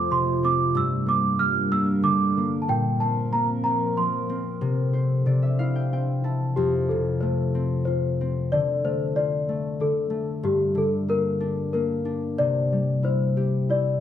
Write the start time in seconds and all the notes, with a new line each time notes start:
Already playing: F2 A3 C4 F4 G4 C5 D6
0.10 C3 C6
0.43 C4 D6
0.74 G2 G3 D4 A#4 E6
1.06 A#3 D6
1.39 G3 F6
1.72 A#3 E6
2.03 D3 D6
2.37 A#3
2.62 A5
2.67 A#2 F3 C4 A#4 G5
3.00 C4 A5
3.33 A#3 A#5
3.64 C4 A#5
3.97 F3 C6
4.29 C4
4.61 C3
4.93 C5
5.26 C3 D5
5.43 E5
5.59 E4 F5
5.76 G5
5.93 C4 G5
6.24 E4 A5
6.56 F2 G4
6.89 C3 A4
7.21 A3 C5
7.55 C4
7.85 F4 C5
8.21 C4
8.52 D3 D5
8.84 A3 C5
9.16 F4 D5
9.49 A3
9.80 D3 A4
10.10 A3
10.43 G2 G4
10.75 D3 A4
11.08 A#3 A#4
11.40 D4
11.73 A#3 A#4
12.05 D4
12.38 C3 D5
12.72 G3
13.03 E4 C5
13.37 G4
13.69 E4 D5